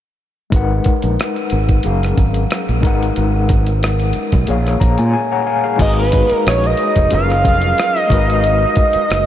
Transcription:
0.50 fretless electric bass G#1, tine electric piano G#3 D#4 A#4, kick, closed hi-hat
0.55 tine electric piano B4 F#5
0.84 kick, closed hi-hat
1.02 fretless electric bass A#1, closed hi-hat
1.20 cross-stick, closed hi-hat
1.36 closed hi-hat
1.50 fretless electric bass G#1, closed hi-hat
1.69 kick, closed hi-hat
1.83 fretless electric bass F#1, tine electric piano F#3 C#4 G#4 A#4 F5, closed hi-hat
2.03 cross-stick, closed hi-hat
2.18 fretless electric bass G#1, kick, closed hi-hat
2.34 closed hi-hat
2.51 cross-stick, closed hi-hat
2.69 fretless electric bass A#1, closed hi-hat
2.81 fretless electric bass G#1, tine electric piano G#3 D#4 A#4, kick, closed hi-hat
2.86 tine electric piano B4 F#5
3.03 closed hi-hat
3.16 fretless electric bass G#1, closed hi-hat
3.49 kick, closed hi-hat
3.67 closed hi-hat
3.83 cross-stick, closed hi-hat
4.00 closed hi-hat
4.13 muted fretless electric bass stroke, closed hi-hat
4.32 fretless electric bass B1, kick, closed hi-hat
4.46 fretless electric bass A#1, tine electric piano A#2 A#3 G#4, closed hi-hat
4.50 tine electric piano C#5 F5
4.67 cross-stick, closed hi-hat
4.80 fretless electric bass A#1, tine electric piano A#5, kick, closed hi-hat
4.98 fretless electric bass A#2, tine electric piano G#5, closed hi-hat
5.13 tine electric piano G#5
5.32 tine electric piano C#5 F#5 A#5
5.46 tine electric piano F5 G#5
5.64 tine electric piano G#4 F5
5.76 fretless electric bass G#1, tine electric piano G#3 D#4 F#4 G#4, kick, closed hi-hat, crash
5.82 tine electric piano B4, analog synth lead D#5
5.99 analog synth lead B4
6.12 kick, closed hi-hat
6.30 muted fretless electric bass stroke, closed hi-hat
6.47 fretless electric bass A#1, analog synth lead C#5, cross-stick, closed hi-hat
6.64 analog synth lead D#5, closed hi-hat
6.77 closed hi-hat
6.96 fretless electric bass F1, kick, closed hi-hat
7.10 fretless electric bass F#1, tine electric piano F#3 C#4 F4 G#4 A#4, closed hi-hat
7.14 analog synth lead F5
7.30 cross-stick, closed hi-hat
7.45 fretless electric bass F1, kick, closed hi-hat
7.62 closed hi-hat
7.78 cross-stick, closed hi-hat
7.97 analog synth lead D#5, closed hi-hat
8.07 tine electric piano G#3 D#4 F#4, kick
8.11 fretless electric bass G#1, tine electric piano A#4 B4, closed hi-hat
8.30 closed hi-hat
8.44 analog synth lead D#5, closed hi-hat
8.76 kick, closed hi-hat
8.93 muted fretless electric bass stroke, closed hi-hat
9.10 fretless electric bass F#1, cross-stick, closed hi-hat

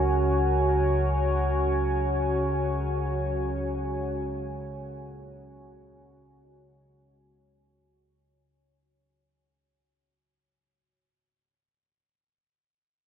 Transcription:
Already playing: synth drone C#2 C#3, ambient pad F#4 C#5 G#5, synth texture A#4
4.59 church bells F#4
5.07 church bells A#2
6.43 church bells D#4
7.14 church bells G#3

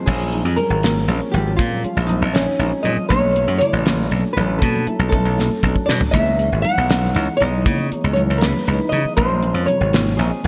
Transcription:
0.05 slap bass A#1, grand piano F3 G#3 C4 C#4, nylon-string guitar G#4, kick, crash, high conga, low conga
0.21 low conga
0.32 grand piano F3 G#3 C4 D#4, closed hi-hat
0.45 slap bass F2
0.56 grand piano F3 G#3 C4 C#4, nylon-string guitar A#4, closed hi-hat, low conga
0.70 slap bass G#1
0.83 snare, closed hi-hat, high conga
0.96 low conga
1.07 slap bass A#1, grand piano F3 G#3 C4 C#4, closed hi-hat
1.31 slap bass G#1, grand piano F3 G#3 C4 C#4, nylon-string guitar G4, closed hi-hat, low conga
1.56 slap bass A#2, nylon-string guitar F4, kick, closed hi-hat, high conga, low conga
1.72 low conga
1.83 grand piano F3 G#3 C4 C#4, muted slap bass stroke, closed hi-hat
1.97 slap bass A#1
2.07 grand piano F3 G#3 C4 D#4, nylon-string guitar D#4, closed hi-hat, low conga
2.22 slap bass A#1
2.33 nylon-string guitar C#4, snare, closed hi-hat, high conga
2.48 low conga
2.59 slap bass A#1, grand piano F3 G#3 C4 D#4, closed hi-hat
2.83 slap bass A#2, grand piano F3 G#3 C4 C#4, nylon-string guitar D#5, closed hi-hat, low conga
2.97 muted slap bass stroke
3.09 slap bass B1, grand piano F#3 A3 C#4 D4, nylon-string guitar C#5, kick, closed hi-hat, high conga, low conga
3.24 low conga
3.35 grand piano F#3 A3 C#4 E4, closed hi-hat
3.48 slap bass F#2
3.58 grand piano C#3 F#3 A3 E4, nylon-string guitar D5, closed hi-hat, low conga
3.73 slap bass A1
3.86 snare, closed hi-hat, high conga
3.99 low conga
4.10 slap bass B1, grand piano F#3 A3 C#4 D4, closed hi-hat
4.33 slap bass A1, grand piano F#3 A3 C#4 D4, nylon-string guitar B4, low conga
4.37 closed hi-hat
4.58 slap bass B2, nylon-string guitar A4, kick, closed hi-hat
4.63 high conga
4.76 low conga
4.87 grand piano F#3 A3 C#4 E4, muted slap bass stroke, closed hi-hat
4.99 slap bass B1
5.09 grand piano F#3 A3 C#4 E4, nylon-string guitar A4, kick, closed hi-hat
5.13 low conga
5.25 slap bass B1
5.38 snare, high conga
5.51 low conga
5.63 slap bass B1, grand piano F#3 A3 C#4 D4, kick
5.76 kick
5.86 slap bass B2, grand piano F#3 A3 C#4 D4, nylon-string guitar D5, snare, low conga
6.01 muted slap bass stroke, floor tom
6.11 slap bass C#2, grand piano E3 G#3 B3 D#4, nylon-string guitar E5, kick, closed hi-hat, high conga, low conga
6.26 low conga
6.38 grand piano E3 G#3 B3 C#4, closed hi-hat
6.52 slap bass G#1
6.62 grand piano E3 G#3 B3 D#4, nylon-string guitar F#5, closed hi-hat, low conga
6.78 slap bass B1
6.90 snare, closed hi-hat, high conga
7.04 low conga
7.14 slap bass C#2, grand piano E3 G#3 B3 D#4, closed hi-hat
7.37 grand piano E3 G#3 B3 D#4, nylon-string guitar D#5, low conga
7.41 slap bass B1, closed hi-hat
7.65 slap bass C#3, kick, closed hi-hat, high conga, low conga
7.78 low conga
7.91 grand piano E3 G#3 B3 D#4, muted slap bass stroke, closed hi-hat
7.96 nylon-string guitar C#5
8.04 slap bass C#2
8.13 grand piano E3 G#3, nylon-string guitar C#5, closed hi-hat, low conga
8.17 grand piano B3 C#4
8.30 slap bass C#2
8.38 nylon-string guitar B4, closed hi-hat, high conga
8.42 snare
8.55 low conga
8.67 slap bass C#2, grand piano E3 G#3 B3 D#4, closed hi-hat
8.89 slap bass C#3, grand piano E3 G#3 B3 D#4, nylon-string guitar D#5, closed hi-hat, low conga
9.05 muted slap bass stroke
9.17 slap bass A#1, grand piano F3 G#3 C4 C#4, nylon-string guitar C5, kick, closed hi-hat, high conga, low conga
9.30 low conga
9.42 grand piano F3 G#3 C4 C#4, closed hi-hat
9.54 slap bass F2
9.66 grand piano C3 F3 G#3 D#4, nylon-string guitar C#5, closed hi-hat, low conga
9.81 slap bass G#1
9.93 snare, closed hi-hat, high conga
10.07 low conga
10.17 slap bass A#1, grand piano F3 G#3 C4 D#4, nylon-string guitar G#4, closed hi-hat
10.43 slap bass G#1, grand piano F3 G#3 C4 D#4, closed hi-hat, low conga

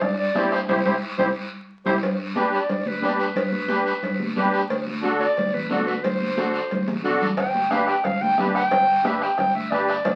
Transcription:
0.01 fingered electric bass G2, clarinet D5, bombo low, bombo rim, cowbell, high conga, low conga, long guiro
0.18 clarinet D5
0.35 fingered electric bass G2, accordion E4 G4 C5, bombo rim, high conga, low conga, low timbale, short guiro
0.52 clarinet C5, bombo rim, short guiro
0.68 fingered electric bass C2, accordion E4 G4 C5, clarinet C5, bombo low, low conga, high timbale, long guiro
0.85 fingered electric bass C2, accordion E4 G4 C5, clarinet C5, bombo low, low conga, high timbale, long guiro
1.18 fingered electric bass C2, accordion E4 G4 C5, clarinet C5, bombo low, low conga, high timbale, long guiro
1.86 fingered electric bass C2, accordion E4 G4 C5, clarinet C5, bombo low, low conga, high timbale, long guiro
2.03 fingered electric bass G2, cowbell, high conga, low conga, long guiro
2.35 accordion D4 G4 B4, high conga, short guiro
2.53 clarinet D5, short guiro
2.69 fingered electric bass G2, cowbell, high conga, low conga, long guiro
2.86 fingered electric bass D2, clarinet B4, high conga
3.02 fingered electric bass G2, accordion D4 G4 B4, clarinet D5, high conga, low timbale, short guiro
3.19 clarinet B4, short guiro
3.36 fingered electric bass G2, clarinet B4, cowbell, high conga, low conga, long guiro
3.52 high conga
3.68 accordion D4 G4 B4, high conga, short guiro
3.87 short guiro
4.03 fingered electric bass G2, cowbell, high conga, low conga, long guiro
4.19 fingered electric bass D2, high conga
4.36 fingered electric bass G2, accordion D4 G4 B4, high conga, low conga, low timbale, short guiro
4.53 short guiro
4.70 fingered electric bass D2, cowbell, high conga, long guiro
4.87 high conga
5.02 accordion D4 F#4 A4, high conga, short guiro
5.20 clarinet D5, short guiro
5.37 fingered electric bass D2, cowbell, high conga, low conga, long guiro
5.54 fingered electric bass A1, clarinet B4, high conga
5.69 fingered electric bass D2, accordion D4 F#4 A4, clarinet D5, high conga, low conga, low timbale, short guiro
5.86 clarinet B4, short guiro
6.03 fingered electric bass D2, clarinet C5, cowbell, high conga, low conga, long guiro
6.21 high conga
6.37 accordion D4 F#4 A4, high conga, short guiro
6.54 short guiro
6.71 fingered electric bass D2, cowbell, high conga, low conga, long guiro
6.88 fingered electric bass A1, high conga
7.04 fingered electric bass B1, accordion D4 F#4 A4, low timbale, short guiro
7.21 fingered electric bass A1, low conga, short guiro
7.37 fingered electric bass G1, clarinet G5, bombo low, bombo rim, cowbell, long guiro
7.55 high conga
7.71 accordion D4 G4 B4, clarinet F5, bombo rim, high conga, short guiro
7.87 clarinet G5, bombo rim, short guiro
8.04 fingered electric bass G1, clarinet F5, bombo low, bombo rim, cowbell, high conga, low conga, long guiro
8.21 fingered electric bass D2, clarinet G5, high conga
8.38 fingered electric bass G1, accordion D4 G4 B4, bombo rim, high conga, low conga, low timbale, short guiro
8.55 clarinet G5, bombo rim, short guiro
8.71 fingered electric bass G1, bombo low, bombo rim, cowbell, high conga, low conga, long guiro
9.04 accordion D4 G4 B4, clarinet E5, bombo rim, high conga, short guiro
9.22 clarinet G5, bombo rim, short guiro
9.38 fingered electric bass G1, clarinet G5, bombo low, bombo rim, cowbell, high conga, low conga, long guiro
9.55 fingered electric bass D2, clarinet E5
9.71 fingered electric bass G1, accordion D4 G4 B4, clarinet D5, bombo rim, high conga, short guiro
9.88 bombo rim, short guiro
10.05 fingered electric bass D2, bombo low, bombo rim, cowbell, high conga, low conga, long guiro

